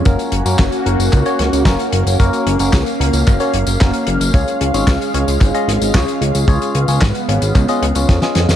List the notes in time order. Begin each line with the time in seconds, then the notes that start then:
Already playing: C#4
0.05 F#1 A#3 C#4 F#4 A#4, kick, closed hi-hat, tambourine
0.19 closed hi-hat, tambourine
0.32 F#1, closed hi-hat
0.46 F#2 A#3 C#4 F#4 A#4, closed hi-hat, tambourine
0.59 F#1, kick, snare, clap, closed hi-hat, tambourine
0.72 closed hi-hat, tambourine
0.86 F#1 A#3 C#4 F#4 A#4, closed hi-hat
0.99 F#1, closed hi-hat, tambourine
1.12 C#2, kick, clap, closed hi-hat, tambourine
1.26 A#3 C#4 F#4 C#5, closed hi-hat, tambourine
1.39 C#2, snare, closed hi-hat
1.53 C#2, closed hi-hat, tambourine
1.65 F#1 A#3 C#4 F#4 A#4, kick, snare, clap, closed hi-hat, tambourine
1.79 closed hi-hat, tambourine
1.93 F#1, closed hi-hat
2.06 F#1, closed hi-hat, tambourine
2.19 F#1 A#3 C#4 F#4 A#4 F5, kick, closed hi-hat, tambourine
2.33 closed hi-hat, tambourine
2.46 F#1, closed hi-hat
2.59 F#1 A#3 C#4 F#4 A#4, closed hi-hat, tambourine
2.73 C#2, kick, snare, clap, closed hi-hat, tambourine
2.86 closed hi-hat, tambourine
3.00 C#2 A#3 C#4 F#4 A#4, closed hi-hat
3.13 C#2, closed hi-hat, tambourine
3.27 F#1, kick, clap, closed hi-hat, tambourine
3.40 A#3 C#4 F#4 C#5, closed hi-hat, tambourine
3.54 F#1, closed hi-hat
3.67 F#1, closed hi-hat, tambourine
3.80 F#1 A#3 C#4 F#4 A#4, kick, snare, clap, closed hi-hat, tambourine
3.94 closed hi-hat, tambourine
4.07 F#1, closed hi-hat
4.20 F#1, closed hi-hat, tambourine
4.34 C#2 G#3 C#4 F4 G#4 C#5, kick, closed hi-hat
4.48 closed hi-hat, tambourine
4.61 C#2, closed hi-hat
4.74 G#1 C#4 F4 G#4 C#5, closed hi-hat, tambourine
4.87 C#2, kick, snare, clap, closed hi-hat, tambourine
5.02 closed hi-hat, tambourine
5.14 C#2 C#4 F4 G#4 C#5, closed hi-hat
5.28 C#2, closed hi-hat, tambourine
5.41 G#1, kick, clap, closed hi-hat, tambourine
5.54 C#4 F4 G#4 D#5, closed hi-hat, tambourine
5.68 G#1, snare, closed hi-hat
5.81 G#1, closed hi-hat, tambourine
5.94 C#2 C#4 F4 G#4 C#5, kick, snare, clap, closed hi-hat, tambourine
6.08 closed hi-hat, tambourine
6.21 C#2, closed hi-hat
6.35 C#2, closed hi-hat, tambourine
6.48 C#2 B3 C#4 F4 G#4 C#5, kick, closed hi-hat, tambourine
6.62 closed hi-hat, tambourine
6.75 C#2, closed hi-hat
6.88 C#2 C#4 F4 G#4 C#5, closed hi-hat, tambourine
7.01 G#1, kick, snare, clap, closed hi-hat
7.15 closed hi-hat, tambourine
7.29 G#1 C#4 F4 G#4 C#5, closed hi-hat
7.42 G#1, closed hi-hat, tambourine
7.55 C#2, kick, clap, closed hi-hat, tambourine
7.68 C#4 F4 G#4 D#5, closed hi-hat, tambourine
7.82 C#2, closed hi-hat
7.95 C#2 C#4 F4 G#4 C#5, closed hi-hat, tambourine
8.09 F2, kick, snare, closed hi-hat, tambourine
8.22 C#4 F4 G#4 D#5, snare, closed hi-hat, tambourine
8.35 F2, snare, closed hi-hat
8.49 F2, snare, closed hi-hat, tambourine